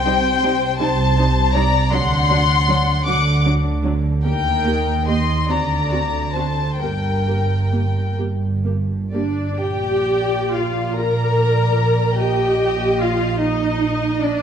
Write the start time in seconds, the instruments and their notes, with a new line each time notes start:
Already playing: double bass section C2, cello section C3, violin section C5 G5
0.06 viola section G3 D#4
0.43 viola section G3 D#4
0.79 double bass section C2, cello section C3, viola section G3 D#4, violin section C5 A5
1.17 viola section G3 D#4
1.54 viola section G3 D#4, violin section D5 A#5
1.92 double bass section D2, cello section D3, viola section F#3 D4, violin section F#5 C6
2.29 viola section F#3 D4
2.68 viola section F#3 D4
3.06 double bass section D2, cello section D3, viola section F#3 D4, violin section F#5 D6
3.46 viola section F#3 D4
3.84 viola section F#3 D4
4.25 double bass section D#2, cello section D#3, viola section A#3 G4, violin section A#4 G5
4.66 viola section A#3 G4
5.07 viola section A#3 G4, violin section D#5 C6
5.49 double bass section D2, cello section D3, viola section C4 F#4, violin section D5 A#5
5.91 viola section C4 F#4
6.34 viola section C4 F#4, violin section C5 A5
6.79 double bass section G1, cello section G2, viola section A#3 G4, violin section A#4 G5
7.26 viola section A#3 G4
7.72 viola section A#3 G4
8.17 double bass section G1, cello section G2, viola section A#3 G4
8.65 viola section A#3 G4
9.13 viola section A#3 D4 G4, violin section D5
9.60 double bass section A#1, cello section A#2, viola section G4, violin section D5 G5
10.53 viola section F4, violin section F5
10.97 viola section A#4, violin section D5 A#5
12.18 viola section G4, violin section D#5 G5
13.01 viola section F4, violin section F5
13.41 viola section D#4, violin section D#5
14.22 viola section D4, violin section D5